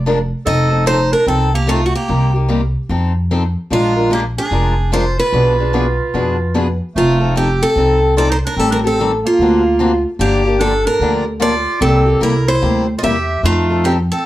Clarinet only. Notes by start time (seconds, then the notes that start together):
0.46 A4
0.87 D#4
1.12 D4
1.27 C4
1.54 A#3
1.70 A3
1.86 A3
1.95 A#3
3.73 G#3
4.13 A#3
4.38 D4
4.93 F4
5.19 F4
6.96 A3
7.37 C4
7.62 C4
8.17 F4
8.30 D#4
8.45 D4
8.57 C4
8.71 D4
8.85 C4
9.24 A#3
10.19 A#3
10.59 D4
10.85 D4
11.41 F4
11.81 C4
12.23 E4
12.47 E4
12.98 F4
13.03 G4
13.43 A3
13.86 C4
14.12 C4